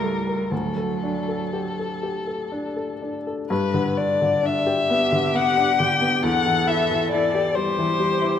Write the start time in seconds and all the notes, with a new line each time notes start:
Already playing: C#2 E4 G4 A#4
0.00 G3 A4
0.27 A#4
0.51 D2 F#3 A4
0.77 A4
1.03 D4
1.28 A4
1.53 G4
1.79 A4
2.03 G4
2.27 A4
2.52 D4
2.76 A4
3.02 D4
3.27 A4
3.49 G2 B4
3.74 D3
3.97 D4 D5
4.22 D3
4.43 D4 E5
4.67 G4
4.89 B3 G4
5.12 D3
5.35 B3 F#5
5.57 D4
5.79 D3 G5
6.01 B3
6.23 E2 A4 F#5
6.46 E3
6.67 E4 E5
6.91 E3
7.12 E4 D5
7.35 G4
7.56 G3 G4 C5
7.78 E3
7.99 G3
8.21 E4